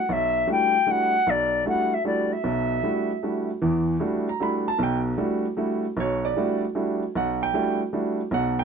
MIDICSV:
0, 0, Header, 1, 3, 480
1, 0, Start_track
1, 0, Key_signature, 1, "minor"
1, 0, Tempo, 392157
1, 100, Time_signature, 3, 2, 24, 8
1, 10575, End_track
2, 0, Start_track
2, 0, Title_t, "Flute"
2, 0, Program_c, 0, 73
2, 0, Note_on_c, 0, 78, 90
2, 146, Note_on_c, 0, 76, 91
2, 165, Note_off_c, 0, 78, 0
2, 603, Note_off_c, 0, 76, 0
2, 631, Note_on_c, 0, 79, 94
2, 1108, Note_on_c, 0, 78, 90
2, 1126, Note_off_c, 0, 79, 0
2, 1584, Note_on_c, 0, 74, 82
2, 1603, Note_off_c, 0, 78, 0
2, 2041, Note_off_c, 0, 74, 0
2, 2058, Note_on_c, 0, 78, 86
2, 2369, Note_on_c, 0, 76, 77
2, 2387, Note_off_c, 0, 78, 0
2, 2516, Note_off_c, 0, 76, 0
2, 2523, Note_on_c, 0, 74, 74
2, 2844, Note_on_c, 0, 76, 83
2, 2862, Note_off_c, 0, 74, 0
2, 4268, Note_off_c, 0, 76, 0
2, 10575, End_track
3, 0, Start_track
3, 0, Title_t, "Grand piano"
3, 0, Program_c, 1, 0
3, 112, Note_on_c, 1, 35, 70
3, 522, Note_off_c, 1, 35, 0
3, 581, Note_on_c, 1, 55, 55
3, 581, Note_on_c, 1, 57, 48
3, 583, Note_on_c, 1, 62, 47
3, 583, Note_on_c, 1, 66, 59
3, 587, Note_on_c, 1, 64, 49
3, 911, Note_off_c, 1, 55, 0
3, 911, Note_off_c, 1, 57, 0
3, 912, Note_off_c, 1, 62, 0
3, 912, Note_off_c, 1, 66, 0
3, 914, Note_off_c, 1, 64, 0
3, 1059, Note_on_c, 1, 55, 53
3, 1059, Note_on_c, 1, 57, 44
3, 1067, Note_on_c, 1, 62, 47
3, 1068, Note_on_c, 1, 66, 56
3, 1069, Note_on_c, 1, 64, 45
3, 1389, Note_off_c, 1, 55, 0
3, 1390, Note_off_c, 1, 57, 0
3, 1394, Note_off_c, 1, 62, 0
3, 1394, Note_off_c, 1, 66, 0
3, 1395, Note_off_c, 1, 64, 0
3, 1554, Note_on_c, 1, 35, 67
3, 1962, Note_off_c, 1, 35, 0
3, 2026, Note_on_c, 1, 55, 51
3, 2028, Note_on_c, 1, 57, 52
3, 2031, Note_on_c, 1, 62, 51
3, 2038, Note_on_c, 1, 64, 50
3, 2042, Note_on_c, 1, 66, 58
3, 2353, Note_off_c, 1, 55, 0
3, 2354, Note_off_c, 1, 57, 0
3, 2356, Note_off_c, 1, 62, 0
3, 2359, Note_off_c, 1, 64, 0
3, 2361, Note_off_c, 1, 66, 0
3, 2506, Note_on_c, 1, 57, 47
3, 2509, Note_on_c, 1, 55, 54
3, 2509, Note_on_c, 1, 62, 47
3, 2509, Note_on_c, 1, 64, 47
3, 2516, Note_on_c, 1, 66, 57
3, 2833, Note_off_c, 1, 57, 0
3, 2834, Note_off_c, 1, 55, 0
3, 2834, Note_off_c, 1, 62, 0
3, 2835, Note_off_c, 1, 64, 0
3, 2838, Note_off_c, 1, 66, 0
3, 2983, Note_on_c, 1, 47, 70
3, 2987, Note_on_c, 1, 35, 64
3, 3396, Note_off_c, 1, 47, 0
3, 3398, Note_off_c, 1, 35, 0
3, 3469, Note_on_c, 1, 55, 54
3, 3469, Note_on_c, 1, 57, 48
3, 3469, Note_on_c, 1, 62, 48
3, 3473, Note_on_c, 1, 64, 48
3, 3478, Note_on_c, 1, 66, 60
3, 3794, Note_off_c, 1, 55, 0
3, 3794, Note_off_c, 1, 57, 0
3, 3794, Note_off_c, 1, 62, 0
3, 3796, Note_off_c, 1, 64, 0
3, 3799, Note_off_c, 1, 66, 0
3, 3952, Note_on_c, 1, 55, 52
3, 3956, Note_on_c, 1, 57, 42
3, 3960, Note_on_c, 1, 62, 45
3, 3964, Note_on_c, 1, 64, 44
3, 3965, Note_on_c, 1, 66, 57
3, 4276, Note_off_c, 1, 55, 0
3, 4278, Note_off_c, 1, 57, 0
3, 4280, Note_off_c, 1, 62, 0
3, 4282, Note_off_c, 1, 64, 0
3, 4283, Note_off_c, 1, 66, 0
3, 4425, Note_on_c, 1, 52, 68
3, 4429, Note_on_c, 1, 40, 68
3, 4837, Note_off_c, 1, 52, 0
3, 4840, Note_off_c, 1, 40, 0
3, 4895, Note_on_c, 1, 55, 56
3, 4896, Note_on_c, 1, 57, 50
3, 4902, Note_on_c, 1, 64, 50
3, 4905, Note_on_c, 1, 62, 53
3, 4905, Note_on_c, 1, 66, 57
3, 5227, Note_off_c, 1, 55, 0
3, 5228, Note_off_c, 1, 57, 0
3, 5231, Note_off_c, 1, 64, 0
3, 5232, Note_off_c, 1, 66, 0
3, 5233, Note_off_c, 1, 62, 0
3, 5254, Note_on_c, 1, 82, 77
3, 5385, Note_on_c, 1, 55, 49
3, 5390, Note_on_c, 1, 57, 48
3, 5393, Note_on_c, 1, 62, 50
3, 5393, Note_on_c, 1, 66, 55
3, 5394, Note_on_c, 1, 64, 50
3, 5395, Note_off_c, 1, 82, 0
3, 5417, Note_on_c, 1, 83, 80
3, 5703, Note_off_c, 1, 83, 0
3, 5713, Note_off_c, 1, 55, 0
3, 5715, Note_off_c, 1, 57, 0
3, 5716, Note_off_c, 1, 66, 0
3, 5717, Note_off_c, 1, 62, 0
3, 5717, Note_off_c, 1, 64, 0
3, 5728, Note_on_c, 1, 81, 88
3, 5855, Note_on_c, 1, 47, 70
3, 5861, Note_on_c, 1, 35, 69
3, 5872, Note_off_c, 1, 81, 0
3, 5913, Note_on_c, 1, 79, 83
3, 6085, Note_off_c, 1, 79, 0
3, 6272, Note_off_c, 1, 47, 0
3, 6276, Note_off_c, 1, 35, 0
3, 6336, Note_on_c, 1, 55, 59
3, 6336, Note_on_c, 1, 57, 53
3, 6337, Note_on_c, 1, 62, 53
3, 6339, Note_on_c, 1, 66, 62
3, 6340, Note_on_c, 1, 64, 49
3, 6668, Note_off_c, 1, 55, 0
3, 6668, Note_off_c, 1, 57, 0
3, 6668, Note_off_c, 1, 62, 0
3, 6670, Note_off_c, 1, 64, 0
3, 6670, Note_off_c, 1, 66, 0
3, 6815, Note_on_c, 1, 55, 52
3, 6821, Note_on_c, 1, 57, 50
3, 6823, Note_on_c, 1, 64, 46
3, 6824, Note_on_c, 1, 62, 48
3, 6824, Note_on_c, 1, 66, 60
3, 7147, Note_off_c, 1, 55, 0
3, 7151, Note_off_c, 1, 57, 0
3, 7151, Note_off_c, 1, 64, 0
3, 7152, Note_off_c, 1, 62, 0
3, 7152, Note_off_c, 1, 66, 0
3, 7303, Note_on_c, 1, 35, 72
3, 7305, Note_on_c, 1, 47, 67
3, 7347, Note_on_c, 1, 73, 86
3, 7628, Note_off_c, 1, 73, 0
3, 7648, Note_on_c, 1, 74, 87
3, 7716, Note_off_c, 1, 35, 0
3, 7717, Note_off_c, 1, 47, 0
3, 7792, Note_on_c, 1, 55, 59
3, 7796, Note_on_c, 1, 57, 52
3, 7796, Note_on_c, 1, 62, 53
3, 7801, Note_on_c, 1, 64, 50
3, 7802, Note_on_c, 1, 66, 61
3, 8078, Note_off_c, 1, 74, 0
3, 8116, Note_off_c, 1, 55, 0
3, 8118, Note_off_c, 1, 57, 0
3, 8118, Note_off_c, 1, 62, 0
3, 8121, Note_off_c, 1, 64, 0
3, 8121, Note_off_c, 1, 66, 0
3, 8262, Note_on_c, 1, 57, 46
3, 8263, Note_on_c, 1, 55, 55
3, 8267, Note_on_c, 1, 62, 50
3, 8267, Note_on_c, 1, 64, 50
3, 8273, Note_on_c, 1, 66, 58
3, 8591, Note_off_c, 1, 55, 0
3, 8591, Note_off_c, 1, 57, 0
3, 8593, Note_off_c, 1, 64, 0
3, 8594, Note_off_c, 1, 62, 0
3, 8596, Note_off_c, 1, 66, 0
3, 8757, Note_on_c, 1, 35, 70
3, 8775, Note_on_c, 1, 78, 80
3, 9062, Note_off_c, 1, 78, 0
3, 9092, Note_on_c, 1, 79, 105
3, 9164, Note_off_c, 1, 35, 0
3, 9224, Note_on_c, 1, 55, 59
3, 9225, Note_on_c, 1, 57, 54
3, 9232, Note_on_c, 1, 64, 51
3, 9234, Note_on_c, 1, 62, 54
3, 9237, Note_on_c, 1, 66, 62
3, 9520, Note_off_c, 1, 79, 0
3, 9552, Note_off_c, 1, 55, 0
3, 9553, Note_off_c, 1, 57, 0
3, 9556, Note_off_c, 1, 64, 0
3, 9557, Note_off_c, 1, 62, 0
3, 9558, Note_off_c, 1, 66, 0
3, 9705, Note_on_c, 1, 55, 52
3, 9705, Note_on_c, 1, 57, 48
3, 9712, Note_on_c, 1, 62, 50
3, 9714, Note_on_c, 1, 64, 50
3, 9716, Note_on_c, 1, 66, 57
3, 10033, Note_off_c, 1, 55, 0
3, 10033, Note_off_c, 1, 57, 0
3, 10036, Note_off_c, 1, 62, 0
3, 10037, Note_off_c, 1, 64, 0
3, 10038, Note_off_c, 1, 66, 0
3, 10175, Note_on_c, 1, 35, 68
3, 10180, Note_on_c, 1, 47, 68
3, 10209, Note_on_c, 1, 78, 84
3, 10499, Note_off_c, 1, 78, 0
3, 10518, Note_on_c, 1, 79, 95
3, 10575, Note_off_c, 1, 35, 0
3, 10575, Note_off_c, 1, 47, 0
3, 10575, Note_off_c, 1, 79, 0
3, 10575, End_track
0, 0, End_of_file